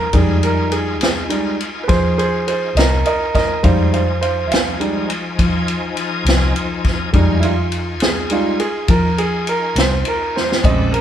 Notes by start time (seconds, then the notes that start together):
Already playing: A#4
0.13 F2 G3 G#3 D#4 F4 G#4 G#5, kick, ride
0.43 A#4, ride
0.72 G#4, ride
0.99 C2, snare, ride
1.29 G3 G#3 D#4, ride
1.60 ride
1.84 B4
1.88 F3 G#4 C5, kick, snare, ride
2.18 G#4 C5, ride
2.47 G#4 C5, ride
2.75 C2 A#4 D#5, snare, ride
3.06 A#4 D#5, ride
3.34 A#4 D#5, kick, snare, ride
3.63 F2 F3 G3 G#3 D#4 C5 F5 G#5, kick, ride
3.93 C5 F5, ride
4.21 C5 F5, ride
4.47 C2 E5
4.51 F5, snare, ride
4.80 G3 G#3 D#4, ride
5.10 ride
5.39 F3, kick, ride
5.68 ride
5.97 ride
6.25 C2, snare, ride
6.56 ride
6.84 kick, snare, ride
7.13 F2 G3 G#3 D#4 F4 G#5, kick, ride
7.40 E4, ride
7.44 F4
7.72 ride
8.00 C2 G#4, snare, ride
8.30 G3 G#3 D#4 F4, ride
8.60 G#4, ride
8.88 F3 A#4, kick, ride
9.18 G#4, ride
9.47 A#4, ride
9.76 C2 C5, snare, ride
10.05 A#4, ride
10.36 C5, snare
10.52 snare
10.63 A#1 C#3 G#3 A3 C4 D4 B4 D#5, kick, ride
10.91 G#3 A#4, ride